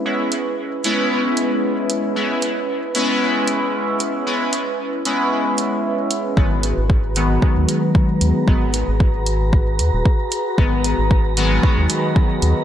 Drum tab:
HH |-x-x-x-x|-x-x-x-x|-x-x-x-x|-x-x-x-x|
BD |--------|--------|--------|o-o-o-o-|

HH |-x-x-x-x|-x-x-x-x|
BD |o-o-o-o-|o-o-o-o-|